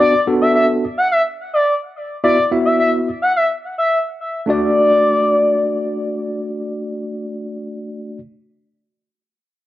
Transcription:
0.00 0.13 B3 medium
0.00 0.13 D4 medium
0.00 0.13 F#4 medium
0.00 0.14 D5 medium
0.00 0.20 D5 loud
0.27 0.84 B3 medium
0.27 0.84 D4 medium
0.27 0.84 F#4 medium
0.27 0.84 A4 medium
0.42 0.52 E5 medium
0.55 0.66 E5 medium
0.98 1.08 F#5 medium
1.12 1.22 E5 medium
1.54 1.74 D5 medium
2.23 2.38 B3 medium
2.23 2.38 E4 medium
2.23 2.38 F#4 medium
2.23 2.44 D5 loud
2.23 2.38 E5 medium
2.51 3.08 B3 medium
2.51 3.08 E4 medium
2.51 3.08 F#4 medium
2.51 3.08 E5 medium
2.66 2.76 E5 medium
2.80 2.90 E5 medium
3.22 3.32 F#5 medium
3.36 3.46 E5 medium
3.78 3.98 E5 medium
4.46 8.17 A3 medium
4.46 8.18 D4 medium
4.46 8.19 F#4 medium
4.46 6.12 D5 medium
4.46 8.19 D5 medium

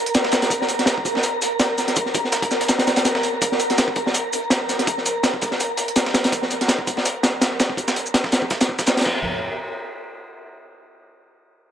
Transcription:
0.00 9.25 A#4 medium
0.00 9.25 A#5 medium
0.06 closed hi-hat soft
0.15 snare loud
0.15 closed hi-hat medium
0.15 shaker medium
0.25 snare soft
0.25 snare loud
0.32 snare loud
0.32 closed hi-hat medium
0.32 shaker medium
0.42 snare medium
0.42 closed hi-hat medium
0.50 kick loud
0.50 closed hi-hat medium
0.50 shaker medium
0.62 snare soft
0.68 closed hi-hat medium
0.68 shaker medium
0.79 snare soft
0.79 closed hi-hat soft
0.86 snare loud
0.86 closed hi-hat medium
0.86 shaker medium
0.98 kick loud
1.05 kick medium
1.05 closed hi-hat medium
1.05 shaker medium
1.15 snare medium
1.15 snare soft
1.23 closed hi-hat medium
1.23 shaker medium
1.42 closed hi-hat medium
1.42 shaker medium
1.60 snare loud
1.60 closed hi-hat medium
1.60 shaker medium
1.78 snare soft
1.78 closed hi-hat medium
1.78 shaker medium
1.88 snare soft
1.88 closed hi-hat soft
1.96 kick loud
1.96 closed hi-hat medium
1.96 shaker medium
2.06 snare soft
2.14 kick medium
2.14 closed hi-hat medium
2.14 shaker medium
2.24 snare soft
2.32 snare loud
2.32 closed hi-hat medium
2.32 shaker medium
2.42 kick medium
2.42 closed hi-hat medium
2.51 snare medium
2.51 snare soft
2.51 shaker medium
2.61 snare medium
2.61 closed hi-hat medium
2.68 snare loud
2.68 closed hi-hat medium
2.68 shaker medium
2.79 snare loud
2.79 closed hi-hat medium
2.87 snare loud
2.87 closed hi-hat medium
2.87 shaker medium
2.96 snare loud
2.96 closed hi-hat medium
2.96 closed hi-hat soft
3.05 snare loud
3.05 closed hi-hat medium
3.05 shaker medium
3.15 snare soft
3.15 snare loud
3.23 closed hi-hat medium
3.23 shaker medium
3.42 kick loud
3.42 closed hi-hat medium
3.42 shaker medium
3.52 snare soft
3.60 closed hi-hat medium
3.60 shaker medium
3.70 snare soft
3.70 closed hi-hat soft
3.78 snare loud
3.78 closed hi-hat medium
3.78 shaker medium
3.88 kick medium
3.96 kick medium
3.96 closed hi-hat medium
4.07 snare soft
4.14 closed hi-hat medium
4.14 shaker medium
4.33 closed hi-hat medium
4.33 shaker medium
4.50 snare loud
4.50 closed hi-hat medium
4.50 shaker medium
4.69 snare soft
4.69 closed hi-hat medium
4.69 shaker medium
4.79 snare soft
4.79 closed hi-hat soft
4.87 kick loud
4.87 closed hi-hat medium
4.87 shaker medium
4.98 snare soft
5.06 closed hi-hat medium
5.06 shaker medium
5.23 snare loud
5.23 closed hi-hat medium
5.23 shaker medium
5.34 kick medium
5.41 kick loud
5.41 snare medium
5.41 closed hi-hat medium
5.41 shaker medium
5.51 snare soft
5.51 snare medium
5.60 closed hi-hat medium
5.60 shaker medium
5.77 closed hi-hat medium
5.77 shaker medium
5.88 closed hi-hat soft
5.96 snare loud
5.96 closed hi-hat medium
5.96 shaker medium
6.06 snare soft
6.06 snare loud
6.14 snare loud
6.14 closed hi-hat medium
6.14 shaker medium
6.24 snare loud
6.24 closed hi-hat medium
6.32 kick loud
6.32 closed hi-hat medium
6.32 shaker medium
6.42 snare soft
6.50 closed hi-hat medium
6.50 shaker medium
6.61 snare soft
6.61 closed hi-hat soft
6.68 snare loud
6.68 closed hi-hat medium
6.68 shaker medium
6.79 kick medium
6.87 kick medium
6.87 closed hi-hat medium
6.87 shaker medium
6.97 snare medium
6.97 snare soft
7.05 closed hi-hat medium
7.05 shaker medium
7.23 snare loud
7.23 closed hi-hat medium
7.23 shaker medium
7.41 snare loud
7.41 closed hi-hat medium
7.41 shaker medium
7.60 snare loud
7.60 closed hi-hat medium
7.60 shaker medium
7.70 kick medium
7.77 kick medium
7.77 closed hi-hat medium
7.77 shaker medium
7.88 snare soft
7.88 snare loud
7.88 shaker medium
7.96 closed hi-hat medium
8.06 shaker medium
8.14 snare loud
8.14 closed hi-hat medium
8.24 kick medium
8.24 snare loud
8.32 snare loud
8.32 closed hi-hat medium
8.32 shaker medium
8.42 kick medium
8.50 kick medium
8.50 snare loud
8.50 closed hi-hat medium
8.61 snare loud
8.61 closed hi-hat medium
8.61 shaker medium
8.69 kick medium
8.79 kick medium
8.79 snare loud
8.79 closed hi-hat medium
8.79 shaker medium
8.86 snare loud
8.86 closed hi-hat medium
8.86 shaker medium
8.97 snare medium
8.97 closed hi-hat medium
9.01 snare medium
9.01 closed hi-hat medium
9.01 crash medium
9.06 kick loud

